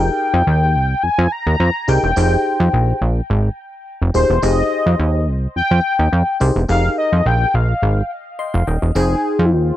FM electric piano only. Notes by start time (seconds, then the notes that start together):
Already playing: D#4 G4 G#4 A#4
1.88 D#4 G4 G#4 A#4
2.16 D#4 G4 G#4 C5
4.14 D#4 G4 G#4 C5
4.42 D#4 G4 G#4 C5
6.40 D#4 G4 G#4 C5
6.68 D#4 G4 G#4 A#4
8.39 D#5 C6
8.54 F5
8.67 D#5 G5
8.82 D#5
8.95 D#4 G#4 C5 G5